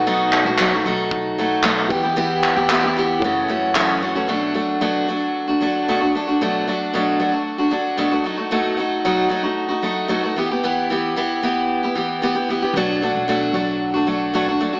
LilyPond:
<<
  \new Staff \with { instrumentName = "Reed electric piano" } { \time 4/4 \key e \dorian \tempo 4 = 114 <dis' a' b' fis''>2.~ <dis' a' b' fis''>8 <e' g' b' g''>8~ | <e' g' b' g''>2 <e' a' cis'' fis''>2 | r1 | r1 |
r1 | r1 | r1 | }
  \new Staff \with { instrumentName = "Steel-string acoustic guitar" } { \time 4/4 \key e \dorian <b, fis a dis' fis'>8. <a dis' fis'>16 <b, fis a dis' fis'>16 <a dis' fis'>16 <fis a dis' fis'>4 <fis a dis' fis'>8 <b, fis a dis' fis'>8 <e b e' g'>16 <b e' g'>16 | <e b e' g'>8. <b e' g'>16 <e b e' g'>16 <b e' g'>16 <e b e' g'>8 <fis, cis e a cis' fis'>8 <e a cis' fis'>8 <fis, cis e a cis' fis'>8 <e a cis' fis'>16 <e a cis' fis'>16 | <b, fis a d' fis'>8 <fis a d' fis'>8 <b, fis a d' fis'>8 <fis a d' fis'>8. <a d' fis'>16 <fis a d' fis'>8 <b, fis a d' fis'>16 <a d' fis'>16 <fis a d' fis'>16 <a d' fis'>16 | <b, fis a d' fis'>8 <fis a d' fis'>8 <b, fis a d' fis'>8 <fis a d' fis'>16 <a d' fis'>8 <a d' fis'>16 <fis a d' fis'>8 <b, fis a d' fis'>16 <a d' fis'>16 <fis a dis' fis'>16 <a dis' fis'>16 |
<b, fis a dis' fis'>8 <fis a dis' fis'>8 <b, fis a dis' fis'>8 <fis a dis' fis'>16 <a dis' fis'>8 <a dis' fis'>16 <fis a dis' fis'>8 <b, fis a dis' fis'>16 <a dis' fis'>16 <e b e' g'>16 <b e' g'>16 | <e b e' g'>8 <e b e' g'>8 <e b e' g'>8 <e b e' g'>8. <b e' g'>16 <e b e' g'>8 <e b e' g'>16 <b e' g'>16 <e b e' g'>16 <b e' g'>16 | <b, fis a d' fis'>8 <fis a d' fis'>8 <b, fis a d' fis'>8 <fis a d' fis'>8. <a d' fis'>16 <fis a d' fis'>8 <b, fis a d' fis'>16 <a d' fis'>16 <fis a d' fis'>16 <a d' fis'>16 | }
  \new Staff \with { instrumentName = "Upright bass" } { \clef bass \time 4/4 \key e \dorian b,,8. b,,8. b,,2 e,8~ | e,8 r16 e,4~ e,16 fis,2 | r1 | r1 |
r1 | r1 | b,,8. b,,8. b,,2 r8 | }
  \new DrumStaff \with { instrumentName = "Drums" } \drummode { \time 4/4 r8 hc8 hc4 bd4 hc8 bd8 | r8 hc8 hc4 bd4 hc4 | r4 r4 r4 r4 | r4 r4 r4 r4 |
r4 r4 r4 r4 | r4 r4 r4 r4 | r4 r4 r4 r4 | }
>>